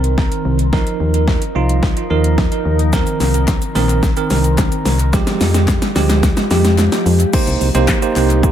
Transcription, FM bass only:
Already playing: C2
0.45 C2
1.00 D#2
1.55 C2
2.10 D#2
2.65 D#2
3.20 C2
3.76 A#1
4.31 C2
4.86 C2
5.41 F2
5.96 D2
6.51 F2
7.06 F2
7.47 C2
7.61 C2
7.75 C2
8.16 C2

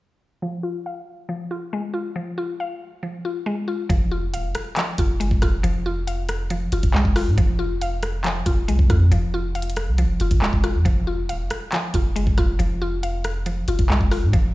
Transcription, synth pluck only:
0.42 F3
0.63 F4
0.86 F5
1.29 F3
1.51 F4
1.73 G#3
1.94 F4
2.16 F3
2.38 F4
2.60 F5
3.03 F3
3.25 F4
3.46 G#3
3.68 F4
3.89 F3
4.11 F4
4.34 F5
4.77 F3
4.99 F4
5.20 G#3
5.43 F4
5.63 F3
5.86 F4
6.07 F5
6.50 F3
6.73 F4
6.94 G#3
7.16 F4
7.38 F3
7.59 F4
7.82 F5
8.24 F3
8.46 F4
8.68 G#3
8.90 F4
9.12 F3
9.34 F4
9.55 F5
9.98 F3
10.21 F4
10.42 G#3
10.64 F4
10.85 F3
11.07 F4
11.29 F5
11.73 F3
11.95 F4
12.16 G#3
12.38 F4
12.59 F3
12.82 F4
13.03 F5
13.46 F3
13.68 F4
13.90 G#3
14.11 F4
14.33 F3

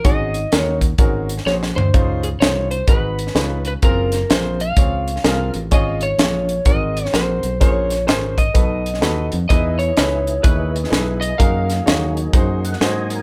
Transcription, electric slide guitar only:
0.05 D#5
0.59 C#5
1.47 C#5
1.76 C5
2.24 G#4
2.40 C#5
2.71 C5
2.89 B4
3.68 B4
3.85 A#4
4.32 C5
4.61 F5
5.74 D#5
6.03 C#5
6.66 D#5
7.14 C5
7.62 C#5
8.08 C5
8.38 D#5
9.49 D#5
9.79 C#5
10.43 B4
11.21 D#5
11.38 F5

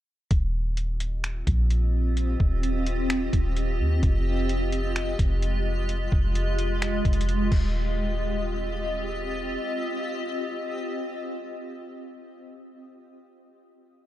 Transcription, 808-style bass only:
0.31 D#1
1.47 A#1
2.40 D#1
3.33 D#1
3.80 D#2
4.03 F1
5.19 F1
6.12 F1
7.05 F1
7.52 D#1

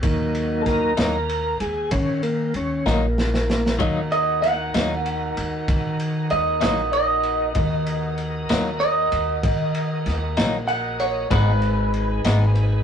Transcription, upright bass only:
0.03 D#2
0.98 D#2
1.60 D#2
1.92 D#3
2.55 D#2
2.86 A#1
3.80 D#2
4.75 D#2
5.37 D#2
5.68 D#3
6.32 D#2
6.63 A#1
7.56 D#2
8.50 D#2
9.12 D#2
9.43 D#3
10.06 D#2
10.38 A#1
11.31 G#1
12.25 G#1

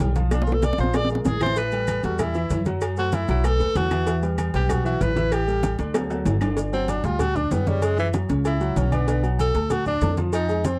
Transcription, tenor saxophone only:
0.33 D4
0.44 F4
0.54 A4
0.65 D5
0.80 C5
0.96 D5
1.12 F4
1.27 G#4
1.43 C5
1.58 B4
2.04 F#4
2.20 E4
2.99 F#4
3.15 E4
3.30 E4
3.46 A4
3.77 F#4
4.55 G4
4.71 F#4
4.86 F#4
5.02 B4
5.33 G4
6.73 C4
6.89 D4
7.05 F4
7.21 F#4
7.36 D4
7.52 B3
7.68 G3
7.83 G#3
7.99 E3
8.47 E4
8.78 C#4
8.94 B3
9.40 A4
9.72 F#4
9.87 D4
10.34 D#4
10.66 C4

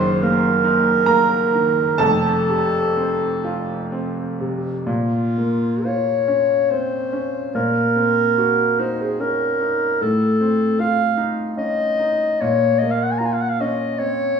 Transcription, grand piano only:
Already playing: F#1 F#2 D#3 C5 C6
0.23 A#3
0.64 D#4
1.06 A#3 A#4 A#5
1.54 D#3
1.98 F1 F2 A4 A5
2.49 C3
2.97 C4
3.44 F4
3.92 C4
4.40 C3
4.87 A#2
5.38 A#3
5.85 F4
6.28 C#4
6.71 C4
7.13 C#4
7.55 A#2
7.96 C4
8.38 F#4
8.79 D#4
9.20 C#4
9.61 D#4
10.01 A2
10.41 C4
10.80 F4
11.17 D#4
11.57 C#4
11.99 D#4
12.41 A#2
12.82 A#3
13.20 F4
13.60 C#4
13.99 C4

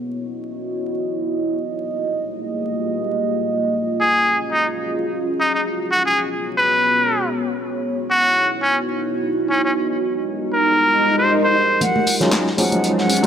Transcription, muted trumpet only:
4.01 G#4
4.52 D#4
5.40 D#4
5.54 D#4
5.92 F#4
6.06 G#4
6.57 B4
8.11 F#4
8.62 C#4
9.51 C#4
9.65 C#4
10.53 A#4
11.18 C5
11.44 C5

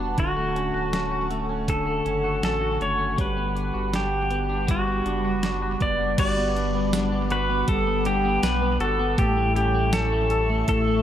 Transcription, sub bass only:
Already playing: E1
0.18 D1
0.74 D1
2.06 F#1
2.43 A1
2.81 F#1
3.18 G1
3.75 G1
5.06 F#1
5.81 F#1
6.18 G1
7.68 G1
8.43 B1
8.80 G1
9.18 A1
10.68 A1

